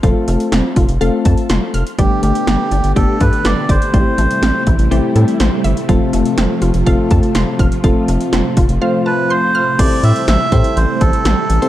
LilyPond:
<<
  \new Staff \with { instrumentName = "Melodica" } { \time 4/4 \key a \minor \tempo 4 = 123 r1 | g'8 g'4. a'8 b'8 d''8 c''8~ | c''4. r2 r8 | r1 |
r2 r8 b'8 c''4 | d''8 e''8 e''4 c''8 a'4. | }
  \new Staff \with { instrumentName = "Synth arpeggio sound" } { \time 4/4 \key a \minor f8 a8 c'8 f'8 f''8 a''8 c'''8 f'''8 | g8 a8 b8 d'8 g'8 a'8 b'8 d''8 | g8 a8 c'8 e'8 g'8 a'8 c''8 e''8 | f8 a8 c'8 f'8 f''8 a''8 c'''8 f'''8 |
f8 a8 c'8 f'8 f''8 a''8 c'''8 f'''8 | r1 | }
  \new Staff \with { instrumentName = "Synth keys" } { \time 4/4 \key a \minor <a c' f' a'>4.~ <a c' f' a'>16 r16 <a c' f' a'>4.~ <a c' f' a'>16 r16 | <a b d' g'>4.~ <a b d' g'>16 r16 <a b d' g'>4.~ <a b d' g'>16 r16 | <a c' e' g'>4.~ <a c' e' g'>16 r16 <a c' e' g'>4.~ <a c' e' g'>16 r16 | <a c' f' a'>4.~ <a c' f' a'>16 r16 <a c' f' a'>4.~ <a c' f' a'>16 r16 |
<a c' f' a'>4.~ <a c' f' a'>16 r16 <a c' f' c''>4.~ <a c' f' c''>16 r16 | <c' e' g' a' c''>4~ <c' e' g' a' c''>16 r16 <c' e' g' a' c''>4.~ <c' e' g' a' c''>16 r8 <c' e' g' a' c''>16 | }
  \new Staff \with { instrumentName = "String machine" } { \time 4/4 \key a \minor << { r1 | <a b g'>1 | <g e'>1 | <f f'>1~ |
<f f'>1 | <g a e'>1 | } \\ { r1 | d1 | c1~ | c1~ |
c1 | c1 | } >> }
  \new Staff \with { instrumentName = "Analog synth bass" } { \clef bass \time 4/4 \key a \minor f,,16 r16 f,,16 r16 f,,16 r16 f,,16 f,,16 f,,16 r16 f,16 r16 f,,16 r16 f,,16 r16 | g,,16 r16 g,,16 r16 g,,16 r16 g,,16 g,,16 g,,16 r16 g,16 r16 g,,16 r16 g,,16 r16 | a,,16 r16 a,,16 r16 a,,16 r16 a,,16 a,,16 a,,16 r16 a,16 r16 a,,16 r16 g,,16 r16 | f,,16 r16 f,,16 r16 f,,16 r16 f,,16 f,,16 f,,16 r16 f,16 r16 f,,16 r16 f,,16 r16 |
f,,16 r16 f,,16 r16 f,,16 r16 f,,16 f,,16 r2 | a,,16 r16 a,16 r16 a,,16 r16 a,16 r16 a,,16 r16 a,,16 r16 a,,16 r16 a,,16 r16 | }
  \new DrumStaff \with { instrumentName = "Drums" } \drummode { \time 4/4 <hh bd>8 hh16 hh16 <hh sn>8 <hh bd>16 hh16 hh8 <hh bd>16 hh16 <hh sn>8 hh16 hh16 | <hh bd>8 hh16 hh16 <hh sn>8 hh16 hh16 <hh bd>8 <hh bd>16 hh16 <hh sn>8 <hh bd>16 hh16 | <hh bd>8 hh16 hh16 <hh sn>8 <hh bd>16 hh16 hh8 hh16 hh16 <hh sn>8 hh16 hh16 | <hh bd>8 hh16 hh16 <hh sn>8 hh16 hh16 <hh bd>8 <hh bd>16 hh16 <hh sn>8 <hh bd>16 hh16 |
<hh bd>8 hh16 hh16 <hh sn>8 <hh bd>16 hh16 r4 r4 | <cymc hh bd>8 hh16 hh16 <hh sn>8 <hh bd>16 hh16 hh8 <hh bd>16 hh16 <hh sn>8 hh16 hh16 | }
>>